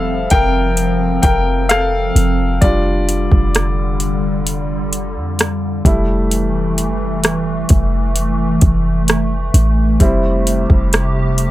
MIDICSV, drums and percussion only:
0, 0, Header, 1, 2, 480
1, 0, Start_track
1, 0, Key_signature, -1, "major"
1, 0, Tempo, 923077
1, 1360, Time_signature, 4, 2, 24, 8
1, 5984, End_track
2, 0, Start_track
2, 0, Title_t, "Drums"
2, 158, Note_on_c, 9, 42, 56
2, 165, Note_on_c, 9, 36, 83
2, 210, Note_off_c, 9, 42, 0
2, 217, Note_off_c, 9, 36, 0
2, 401, Note_on_c, 9, 42, 64
2, 453, Note_off_c, 9, 42, 0
2, 639, Note_on_c, 9, 42, 64
2, 642, Note_on_c, 9, 36, 83
2, 691, Note_off_c, 9, 42, 0
2, 694, Note_off_c, 9, 36, 0
2, 881, Note_on_c, 9, 42, 67
2, 890, Note_on_c, 9, 37, 110
2, 933, Note_off_c, 9, 42, 0
2, 942, Note_off_c, 9, 37, 0
2, 1125, Note_on_c, 9, 42, 57
2, 1177, Note_off_c, 9, 42, 0
2, 1361, Note_on_c, 9, 42, 64
2, 1362, Note_on_c, 9, 36, 103
2, 1413, Note_off_c, 9, 42, 0
2, 1414, Note_off_c, 9, 36, 0
2, 1605, Note_on_c, 9, 42, 61
2, 1657, Note_off_c, 9, 42, 0
2, 1724, Note_on_c, 9, 36, 85
2, 1776, Note_off_c, 9, 36, 0
2, 1844, Note_on_c, 9, 42, 64
2, 1850, Note_on_c, 9, 37, 106
2, 1896, Note_off_c, 9, 42, 0
2, 1902, Note_off_c, 9, 37, 0
2, 2080, Note_on_c, 9, 42, 55
2, 2132, Note_off_c, 9, 42, 0
2, 2322, Note_on_c, 9, 42, 65
2, 2374, Note_off_c, 9, 42, 0
2, 2562, Note_on_c, 9, 42, 64
2, 2614, Note_off_c, 9, 42, 0
2, 2803, Note_on_c, 9, 42, 67
2, 2811, Note_on_c, 9, 37, 109
2, 2855, Note_off_c, 9, 42, 0
2, 2863, Note_off_c, 9, 37, 0
2, 3042, Note_on_c, 9, 36, 100
2, 3046, Note_on_c, 9, 42, 58
2, 3094, Note_off_c, 9, 36, 0
2, 3098, Note_off_c, 9, 42, 0
2, 3284, Note_on_c, 9, 42, 64
2, 3336, Note_off_c, 9, 42, 0
2, 3525, Note_on_c, 9, 42, 68
2, 3577, Note_off_c, 9, 42, 0
2, 3763, Note_on_c, 9, 42, 66
2, 3768, Note_on_c, 9, 37, 109
2, 3815, Note_off_c, 9, 42, 0
2, 3820, Note_off_c, 9, 37, 0
2, 3999, Note_on_c, 9, 42, 57
2, 4005, Note_on_c, 9, 36, 83
2, 4051, Note_off_c, 9, 42, 0
2, 4057, Note_off_c, 9, 36, 0
2, 4241, Note_on_c, 9, 42, 65
2, 4293, Note_off_c, 9, 42, 0
2, 4479, Note_on_c, 9, 42, 64
2, 4482, Note_on_c, 9, 36, 83
2, 4531, Note_off_c, 9, 42, 0
2, 4534, Note_off_c, 9, 36, 0
2, 4722, Note_on_c, 9, 42, 65
2, 4730, Note_on_c, 9, 37, 111
2, 4774, Note_off_c, 9, 42, 0
2, 4782, Note_off_c, 9, 37, 0
2, 4962, Note_on_c, 9, 42, 59
2, 5014, Note_off_c, 9, 42, 0
2, 5201, Note_on_c, 9, 36, 101
2, 5201, Note_on_c, 9, 42, 64
2, 5253, Note_off_c, 9, 36, 0
2, 5253, Note_off_c, 9, 42, 0
2, 5444, Note_on_c, 9, 42, 67
2, 5496, Note_off_c, 9, 42, 0
2, 5563, Note_on_c, 9, 36, 88
2, 5615, Note_off_c, 9, 36, 0
2, 5682, Note_on_c, 9, 42, 66
2, 5688, Note_on_c, 9, 37, 108
2, 5734, Note_off_c, 9, 42, 0
2, 5740, Note_off_c, 9, 37, 0
2, 5917, Note_on_c, 9, 42, 58
2, 5969, Note_off_c, 9, 42, 0
2, 5984, End_track
0, 0, End_of_file